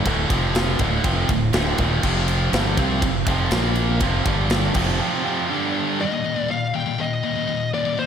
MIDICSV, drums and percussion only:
0, 0, Header, 1, 2, 480
1, 0, Start_track
1, 0, Tempo, 494234
1, 56, Time_signature, 4, 2, 24, 8
1, 7831, End_track
2, 0, Start_track
2, 0, Title_t, "Drums"
2, 54, Note_on_c, 9, 36, 111
2, 56, Note_on_c, 9, 51, 111
2, 151, Note_off_c, 9, 36, 0
2, 153, Note_off_c, 9, 51, 0
2, 293, Note_on_c, 9, 36, 111
2, 295, Note_on_c, 9, 51, 81
2, 390, Note_off_c, 9, 36, 0
2, 392, Note_off_c, 9, 51, 0
2, 533, Note_on_c, 9, 51, 107
2, 544, Note_on_c, 9, 38, 112
2, 630, Note_off_c, 9, 51, 0
2, 641, Note_off_c, 9, 38, 0
2, 767, Note_on_c, 9, 51, 82
2, 772, Note_on_c, 9, 36, 107
2, 864, Note_off_c, 9, 51, 0
2, 869, Note_off_c, 9, 36, 0
2, 1010, Note_on_c, 9, 51, 108
2, 1013, Note_on_c, 9, 36, 115
2, 1107, Note_off_c, 9, 51, 0
2, 1110, Note_off_c, 9, 36, 0
2, 1252, Note_on_c, 9, 51, 84
2, 1254, Note_on_c, 9, 36, 100
2, 1349, Note_off_c, 9, 51, 0
2, 1351, Note_off_c, 9, 36, 0
2, 1486, Note_on_c, 9, 51, 111
2, 1497, Note_on_c, 9, 38, 112
2, 1583, Note_off_c, 9, 51, 0
2, 1594, Note_off_c, 9, 38, 0
2, 1729, Note_on_c, 9, 51, 85
2, 1734, Note_on_c, 9, 36, 105
2, 1826, Note_off_c, 9, 51, 0
2, 1832, Note_off_c, 9, 36, 0
2, 1974, Note_on_c, 9, 49, 106
2, 1976, Note_on_c, 9, 36, 111
2, 2071, Note_off_c, 9, 49, 0
2, 2073, Note_off_c, 9, 36, 0
2, 2213, Note_on_c, 9, 51, 92
2, 2310, Note_off_c, 9, 51, 0
2, 2457, Note_on_c, 9, 51, 102
2, 2468, Note_on_c, 9, 38, 116
2, 2554, Note_off_c, 9, 51, 0
2, 2565, Note_off_c, 9, 38, 0
2, 2693, Note_on_c, 9, 51, 81
2, 2695, Note_on_c, 9, 36, 103
2, 2790, Note_off_c, 9, 51, 0
2, 2792, Note_off_c, 9, 36, 0
2, 2935, Note_on_c, 9, 36, 104
2, 2936, Note_on_c, 9, 51, 117
2, 3032, Note_off_c, 9, 36, 0
2, 3033, Note_off_c, 9, 51, 0
2, 3173, Note_on_c, 9, 36, 119
2, 3174, Note_on_c, 9, 51, 84
2, 3270, Note_off_c, 9, 36, 0
2, 3271, Note_off_c, 9, 51, 0
2, 3407, Note_on_c, 9, 51, 96
2, 3417, Note_on_c, 9, 38, 112
2, 3504, Note_off_c, 9, 51, 0
2, 3514, Note_off_c, 9, 38, 0
2, 3647, Note_on_c, 9, 51, 72
2, 3744, Note_off_c, 9, 51, 0
2, 3888, Note_on_c, 9, 51, 107
2, 3893, Note_on_c, 9, 36, 109
2, 3985, Note_off_c, 9, 51, 0
2, 3990, Note_off_c, 9, 36, 0
2, 4134, Note_on_c, 9, 36, 112
2, 4134, Note_on_c, 9, 51, 76
2, 4231, Note_off_c, 9, 36, 0
2, 4231, Note_off_c, 9, 51, 0
2, 4368, Note_on_c, 9, 51, 100
2, 4379, Note_on_c, 9, 38, 115
2, 4466, Note_off_c, 9, 51, 0
2, 4476, Note_off_c, 9, 38, 0
2, 4606, Note_on_c, 9, 57, 106
2, 4613, Note_on_c, 9, 36, 114
2, 4703, Note_off_c, 9, 57, 0
2, 4710, Note_off_c, 9, 36, 0
2, 7831, End_track
0, 0, End_of_file